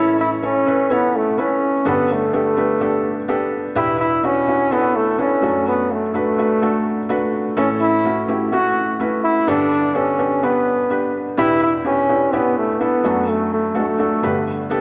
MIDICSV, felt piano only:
0, 0, Header, 1, 2, 480
1, 0, Start_track
1, 0, Tempo, 475813
1, 1878, Time_signature, 4, 2, 24, 8
1, 14938, End_track
2, 0, Start_track
2, 0, Title_t, "Felt piano"
2, 0, Program_c, 0, 0
2, 0, Note_on_c, 0, 45, 48
2, 0, Note_on_c, 0, 52, 55
2, 0, Note_on_c, 0, 61, 75
2, 0, Note_on_c, 0, 64, 72
2, 0, Note_on_c, 0, 69, 70
2, 0, Note_on_c, 0, 73, 82
2, 160, Control_c, 0, 64, 127
2, 305, Note_off_c, 0, 61, 0
2, 308, Note_off_c, 0, 64, 0
2, 309, Note_off_c, 0, 69, 0
2, 312, Note_off_c, 0, 73, 0
2, 425, Note_on_c, 0, 61, 51
2, 431, Note_on_c, 0, 64, 47
2, 432, Note_on_c, 0, 69, 52
2, 436, Note_on_c, 0, 73, 59
2, 609, Note_off_c, 0, 61, 0
2, 612, Note_off_c, 0, 64, 0
2, 613, Note_off_c, 0, 69, 0
2, 615, Note_off_c, 0, 73, 0
2, 667, Note_on_c, 0, 61, 53
2, 674, Note_on_c, 0, 64, 48
2, 675, Note_on_c, 0, 69, 53
2, 680, Note_on_c, 0, 71, 62
2, 850, Note_off_c, 0, 61, 0
2, 853, Note_off_c, 0, 64, 0
2, 854, Note_off_c, 0, 69, 0
2, 856, Note_off_c, 0, 71, 0
2, 907, Note_on_c, 0, 61, 62
2, 911, Note_on_c, 0, 64, 59
2, 914, Note_on_c, 0, 69, 57
2, 920, Note_on_c, 0, 73, 68
2, 1267, Note_off_c, 0, 61, 0
2, 1269, Note_off_c, 0, 64, 0
2, 1271, Note_off_c, 0, 69, 0
2, 1274, Note_off_c, 0, 73, 0
2, 1388, Note_on_c, 0, 61, 52
2, 1393, Note_on_c, 0, 64, 54
2, 1395, Note_on_c, 0, 69, 49
2, 1400, Note_on_c, 0, 71, 67
2, 1747, Note_off_c, 0, 61, 0
2, 1750, Note_off_c, 0, 64, 0
2, 1751, Note_off_c, 0, 69, 0
2, 1754, Note_off_c, 0, 71, 0
2, 1834, Note_off_c, 0, 45, 0
2, 1834, Note_off_c, 0, 52, 0
2, 1867, Note_on_c, 0, 59, 77
2, 1870, Note_on_c, 0, 50, 51
2, 1871, Note_on_c, 0, 62, 69
2, 1873, Note_on_c, 0, 43, 55
2, 1876, Note_on_c, 0, 67, 70
2, 1876, Note_on_c, 0, 69, 84
2, 1891, Control_c, 0, 64, 0
2, 2057, Control_c, 0, 64, 127
2, 2227, Note_off_c, 0, 59, 0
2, 2229, Note_off_c, 0, 62, 0
2, 2231, Note_off_c, 0, 69, 0
2, 2232, Note_off_c, 0, 67, 0
2, 2347, Note_on_c, 0, 59, 59
2, 2350, Note_on_c, 0, 62, 57
2, 2354, Note_on_c, 0, 67, 52
2, 2358, Note_on_c, 0, 69, 66
2, 2530, Note_off_c, 0, 59, 0
2, 2531, Note_off_c, 0, 62, 0
2, 2534, Note_off_c, 0, 67, 0
2, 2535, Note_off_c, 0, 69, 0
2, 2585, Note_on_c, 0, 59, 57
2, 2591, Note_on_c, 0, 62, 49
2, 2591, Note_on_c, 0, 67, 47
2, 2598, Note_on_c, 0, 71, 59
2, 2769, Note_off_c, 0, 59, 0
2, 2772, Note_off_c, 0, 62, 0
2, 2772, Note_off_c, 0, 67, 0
2, 2775, Note_off_c, 0, 71, 0
2, 2828, Note_on_c, 0, 59, 64
2, 2832, Note_on_c, 0, 62, 57
2, 2838, Note_on_c, 0, 67, 59
2, 2839, Note_on_c, 0, 69, 70
2, 3188, Note_off_c, 0, 59, 0
2, 3190, Note_off_c, 0, 62, 0
2, 3193, Note_off_c, 0, 67, 0
2, 3193, Note_off_c, 0, 69, 0
2, 3310, Note_on_c, 0, 59, 72
2, 3315, Note_on_c, 0, 67, 66
2, 3316, Note_on_c, 0, 62, 67
2, 3324, Note_on_c, 0, 69, 79
2, 3669, Note_off_c, 0, 59, 0
2, 3671, Note_off_c, 0, 67, 0
2, 3672, Note_off_c, 0, 62, 0
2, 3676, Note_off_c, 0, 69, 0
2, 3754, Note_off_c, 0, 50, 0
2, 3756, Note_off_c, 0, 43, 0
2, 3788, Note_on_c, 0, 59, 77
2, 3788, Note_on_c, 0, 62, 74
2, 3793, Note_on_c, 0, 40, 54
2, 3795, Note_on_c, 0, 47, 53
2, 3795, Note_on_c, 0, 64, 73
2, 3797, Note_on_c, 0, 67, 85
2, 3812, Control_c, 0, 64, 0
2, 3975, Control_c, 0, 64, 127
2, 4147, Note_off_c, 0, 59, 0
2, 4148, Note_off_c, 0, 62, 0
2, 4151, Note_off_c, 0, 64, 0
2, 4152, Note_off_c, 0, 67, 0
2, 4268, Note_on_c, 0, 59, 59
2, 4272, Note_on_c, 0, 62, 54
2, 4274, Note_on_c, 0, 64, 50
2, 4278, Note_on_c, 0, 66, 66
2, 4450, Note_off_c, 0, 59, 0
2, 4452, Note_off_c, 0, 62, 0
2, 4453, Note_off_c, 0, 64, 0
2, 4456, Note_off_c, 0, 66, 0
2, 4512, Note_on_c, 0, 59, 56
2, 4513, Note_on_c, 0, 62, 54
2, 4519, Note_on_c, 0, 64, 52
2, 4523, Note_on_c, 0, 66, 62
2, 4692, Note_off_c, 0, 59, 0
2, 4693, Note_off_c, 0, 62, 0
2, 4696, Note_off_c, 0, 64, 0
2, 4698, Note_off_c, 0, 66, 0
2, 4751, Note_on_c, 0, 59, 65
2, 4756, Note_on_c, 0, 62, 59
2, 4758, Note_on_c, 0, 64, 59
2, 4763, Note_on_c, 0, 69, 74
2, 5109, Note_off_c, 0, 59, 0
2, 5111, Note_off_c, 0, 62, 0
2, 5113, Note_off_c, 0, 64, 0
2, 5115, Note_off_c, 0, 69, 0
2, 5228, Note_on_c, 0, 59, 59
2, 5233, Note_on_c, 0, 62, 53
2, 5233, Note_on_c, 0, 64, 57
2, 5241, Note_on_c, 0, 69, 65
2, 5435, Note_off_c, 0, 40, 0
2, 5436, Note_off_c, 0, 47, 0
2, 5457, Note_off_c, 0, 62, 0
2, 5467, Note_off_c, 0, 69, 0
2, 5467, Note_on_c, 0, 57, 57
2, 5473, Note_off_c, 0, 59, 0
2, 5473, Note_on_c, 0, 62, 56
2, 5475, Note_on_c, 0, 42, 46
2, 5475, Note_on_c, 0, 54, 55
2, 5476, Note_off_c, 0, 64, 0
2, 5478, Note_on_c, 0, 66, 58
2, 5482, Note_on_c, 0, 69, 66
2, 5493, Control_c, 0, 64, 0
2, 5681, Control_c, 0, 64, 127
2, 6048, Note_off_c, 0, 57, 0
2, 6051, Note_off_c, 0, 62, 0
2, 6054, Note_off_c, 0, 66, 0
2, 6056, Note_off_c, 0, 69, 0
2, 6193, Note_on_c, 0, 57, 57
2, 6200, Note_on_c, 0, 62, 51
2, 6202, Note_on_c, 0, 66, 50
2, 6205, Note_on_c, 0, 71, 63
2, 6372, Note_off_c, 0, 57, 0
2, 6376, Note_off_c, 0, 62, 0
2, 6377, Note_off_c, 0, 66, 0
2, 6379, Note_off_c, 0, 71, 0
2, 6438, Note_on_c, 0, 57, 57
2, 6439, Note_on_c, 0, 62, 46
2, 6443, Note_on_c, 0, 66, 52
2, 6448, Note_on_c, 0, 71, 58
2, 6615, Note_off_c, 0, 57, 0
2, 6615, Note_off_c, 0, 62, 0
2, 6618, Note_off_c, 0, 66, 0
2, 6620, Note_off_c, 0, 71, 0
2, 6677, Note_on_c, 0, 57, 60
2, 6680, Note_on_c, 0, 62, 54
2, 6682, Note_on_c, 0, 66, 54
2, 6686, Note_on_c, 0, 69, 72
2, 7031, Note_off_c, 0, 57, 0
2, 7033, Note_off_c, 0, 62, 0
2, 7034, Note_off_c, 0, 66, 0
2, 7036, Note_off_c, 0, 69, 0
2, 7153, Note_on_c, 0, 57, 68
2, 7156, Note_on_c, 0, 62, 63
2, 7161, Note_on_c, 0, 66, 63
2, 7162, Note_on_c, 0, 71, 73
2, 7356, Note_off_c, 0, 42, 0
2, 7356, Note_off_c, 0, 54, 0
2, 7510, Note_off_c, 0, 57, 0
2, 7511, Note_off_c, 0, 62, 0
2, 7513, Note_off_c, 0, 66, 0
2, 7514, Note_off_c, 0, 71, 0
2, 7633, Note_on_c, 0, 57, 80
2, 7634, Note_on_c, 0, 52, 51
2, 7637, Note_on_c, 0, 45, 57
2, 7637, Note_on_c, 0, 61, 69
2, 7640, Note_on_c, 0, 64, 73
2, 7642, Note_on_c, 0, 69, 82
2, 7652, Control_c, 0, 64, 0
2, 7813, Control_c, 0, 64, 127
2, 7989, Note_off_c, 0, 57, 0
2, 7991, Note_off_c, 0, 61, 0
2, 7993, Note_off_c, 0, 64, 0
2, 7994, Note_off_c, 0, 69, 0
2, 8116, Note_on_c, 0, 57, 58
2, 8118, Note_on_c, 0, 61, 53
2, 8124, Note_on_c, 0, 64, 52
2, 8128, Note_on_c, 0, 66, 62
2, 8293, Note_off_c, 0, 57, 0
2, 8294, Note_off_c, 0, 61, 0
2, 8297, Note_off_c, 0, 64, 0
2, 8300, Note_off_c, 0, 66, 0
2, 8355, Note_on_c, 0, 57, 54
2, 8358, Note_on_c, 0, 61, 51
2, 8360, Note_on_c, 0, 64, 50
2, 8364, Note_on_c, 0, 67, 58
2, 8533, Note_off_c, 0, 57, 0
2, 8535, Note_off_c, 0, 61, 0
2, 8536, Note_off_c, 0, 64, 0
2, 8538, Note_off_c, 0, 67, 0
2, 8596, Note_on_c, 0, 57, 61
2, 8602, Note_on_c, 0, 61, 60
2, 8604, Note_on_c, 0, 64, 60
2, 8606, Note_on_c, 0, 66, 68
2, 8950, Note_off_c, 0, 57, 0
2, 8953, Note_off_c, 0, 61, 0
2, 8955, Note_off_c, 0, 64, 0
2, 8955, Note_off_c, 0, 66, 0
2, 9075, Note_on_c, 0, 57, 59
2, 9079, Note_on_c, 0, 61, 55
2, 9079, Note_on_c, 0, 64, 53
2, 9085, Note_on_c, 0, 71, 63
2, 9430, Note_off_c, 0, 57, 0
2, 9432, Note_off_c, 0, 61, 0
2, 9432, Note_off_c, 0, 64, 0
2, 9435, Note_off_c, 0, 71, 0
2, 9514, Note_off_c, 0, 52, 0
2, 9516, Note_off_c, 0, 45, 0
2, 9554, Note_on_c, 0, 59, 78
2, 9557, Note_on_c, 0, 62, 73
2, 9559, Note_on_c, 0, 43, 54
2, 9559, Note_on_c, 0, 50, 54
2, 9562, Note_on_c, 0, 67, 71
2, 9563, Note_on_c, 0, 69, 92
2, 9568, Control_c, 0, 64, 0
2, 9752, Control_c, 0, 64, 127
2, 9909, Note_off_c, 0, 59, 0
2, 9911, Note_off_c, 0, 62, 0
2, 9913, Note_off_c, 0, 67, 0
2, 9914, Note_off_c, 0, 69, 0
2, 10033, Note_on_c, 0, 59, 61
2, 10037, Note_on_c, 0, 62, 51
2, 10041, Note_on_c, 0, 67, 53
2, 10044, Note_on_c, 0, 69, 70
2, 10211, Note_off_c, 0, 59, 0
2, 10213, Note_off_c, 0, 62, 0
2, 10215, Note_off_c, 0, 67, 0
2, 10217, Note_off_c, 0, 69, 0
2, 10275, Note_on_c, 0, 59, 58
2, 10278, Note_on_c, 0, 62, 53
2, 10280, Note_on_c, 0, 67, 51
2, 10284, Note_on_c, 0, 69, 62
2, 10452, Note_off_c, 0, 59, 0
2, 10454, Note_off_c, 0, 62, 0
2, 10455, Note_off_c, 0, 67, 0
2, 10457, Note_off_c, 0, 69, 0
2, 10518, Note_on_c, 0, 59, 64
2, 10519, Note_on_c, 0, 62, 56
2, 10523, Note_on_c, 0, 67, 57
2, 10526, Note_on_c, 0, 71, 72
2, 10871, Note_off_c, 0, 59, 0
2, 10872, Note_off_c, 0, 62, 0
2, 10873, Note_off_c, 0, 67, 0
2, 10875, Note_off_c, 0, 71, 0
2, 10995, Note_on_c, 0, 59, 57
2, 10999, Note_on_c, 0, 62, 54
2, 11004, Note_on_c, 0, 67, 50
2, 11006, Note_on_c, 0, 71, 61
2, 11349, Note_off_c, 0, 59, 0
2, 11351, Note_off_c, 0, 62, 0
2, 11354, Note_off_c, 0, 67, 0
2, 11355, Note_off_c, 0, 71, 0
2, 11436, Note_off_c, 0, 43, 0
2, 11436, Note_off_c, 0, 50, 0
2, 11473, Note_on_c, 0, 59, 78
2, 11476, Note_on_c, 0, 62, 77
2, 11477, Note_on_c, 0, 47, 55
2, 11478, Note_on_c, 0, 40, 55
2, 11479, Note_on_c, 0, 64, 73
2, 11483, Note_on_c, 0, 67, 93
2, 11490, Control_c, 0, 64, 0
2, 11645, Control_c, 0, 64, 127
2, 11828, Note_off_c, 0, 59, 0
2, 11829, Note_off_c, 0, 62, 0
2, 11831, Note_off_c, 0, 64, 0
2, 11833, Note_off_c, 0, 67, 0
2, 11948, Note_on_c, 0, 59, 59
2, 11949, Note_on_c, 0, 62, 54
2, 11953, Note_on_c, 0, 64, 55
2, 11960, Note_on_c, 0, 67, 65
2, 12128, Note_off_c, 0, 59, 0
2, 12129, Note_off_c, 0, 62, 0
2, 12131, Note_off_c, 0, 64, 0
2, 12134, Note_off_c, 0, 67, 0
2, 12192, Note_on_c, 0, 59, 55
2, 12195, Note_on_c, 0, 62, 51
2, 12199, Note_on_c, 0, 64, 52
2, 12202, Note_on_c, 0, 67, 64
2, 12370, Note_off_c, 0, 59, 0
2, 12372, Note_off_c, 0, 62, 0
2, 12374, Note_off_c, 0, 64, 0
2, 12375, Note_off_c, 0, 67, 0
2, 12434, Note_on_c, 0, 59, 65
2, 12441, Note_on_c, 0, 62, 60
2, 12443, Note_on_c, 0, 64, 64
2, 12443, Note_on_c, 0, 67, 71
2, 12788, Note_off_c, 0, 59, 0
2, 12792, Note_off_c, 0, 62, 0
2, 12792, Note_off_c, 0, 64, 0
2, 12793, Note_off_c, 0, 67, 0
2, 12914, Note_on_c, 0, 59, 59
2, 12918, Note_on_c, 0, 62, 53
2, 12919, Note_on_c, 0, 64, 54
2, 12922, Note_on_c, 0, 69, 66
2, 13114, Note_off_c, 0, 47, 0
2, 13115, Note_off_c, 0, 40, 0
2, 13143, Note_off_c, 0, 62, 0
2, 13148, Note_off_c, 0, 69, 0
2, 13153, Note_on_c, 0, 57, 63
2, 13154, Note_off_c, 0, 59, 0
2, 13156, Note_off_c, 0, 64, 0
2, 13156, Note_on_c, 0, 42, 53
2, 13158, Note_on_c, 0, 62, 53
2, 13160, Note_on_c, 0, 54, 54
2, 13162, Note_on_c, 0, 66, 53
2, 13163, Note_on_c, 0, 69, 67
2, 13169, Control_c, 0, 64, 0
2, 13330, Control_c, 0, 64, 127
2, 13729, Note_off_c, 0, 57, 0
2, 13732, Note_off_c, 0, 62, 0
2, 13733, Note_off_c, 0, 66, 0
2, 13734, Note_off_c, 0, 69, 0
2, 13867, Note_on_c, 0, 57, 60
2, 13869, Note_on_c, 0, 62, 55
2, 13873, Note_on_c, 0, 66, 55
2, 13876, Note_on_c, 0, 69, 65
2, 14047, Note_off_c, 0, 57, 0
2, 14048, Note_off_c, 0, 62, 0
2, 14050, Note_off_c, 0, 66, 0
2, 14052, Note_off_c, 0, 69, 0
2, 14110, Note_on_c, 0, 57, 56
2, 14114, Note_on_c, 0, 62, 52
2, 14118, Note_on_c, 0, 66, 50
2, 14122, Note_on_c, 0, 69, 63
2, 14288, Note_off_c, 0, 57, 0
2, 14291, Note_off_c, 0, 62, 0
2, 14293, Note_off_c, 0, 66, 0
2, 14294, Note_off_c, 0, 69, 0
2, 14314, Note_off_c, 0, 42, 0
2, 14316, Note_off_c, 0, 54, 0
2, 14353, Note_on_c, 0, 59, 61
2, 14354, Note_on_c, 0, 62, 55
2, 14357, Note_on_c, 0, 50, 58
2, 14358, Note_on_c, 0, 43, 54
2, 14360, Note_on_c, 0, 67, 53
2, 14360, Note_on_c, 0, 71, 74
2, 14364, Control_c, 0, 64, 0
2, 14574, Control_c, 0, 64, 127
2, 14707, Note_off_c, 0, 59, 0
2, 14707, Note_off_c, 0, 62, 0
2, 14711, Note_off_c, 0, 67, 0
2, 14711, Note_off_c, 0, 71, 0
2, 14828, Note_on_c, 0, 59, 72
2, 14831, Note_on_c, 0, 62, 58
2, 14838, Note_on_c, 0, 67, 59
2, 14840, Note_on_c, 0, 69, 79
2, 14938, Note_off_c, 0, 43, 0
2, 14938, Note_off_c, 0, 50, 0
2, 14938, Note_off_c, 0, 59, 0
2, 14938, Note_off_c, 0, 62, 0
2, 14938, Note_off_c, 0, 67, 0
2, 14938, Note_off_c, 0, 69, 0
2, 14938, End_track
0, 0, End_of_file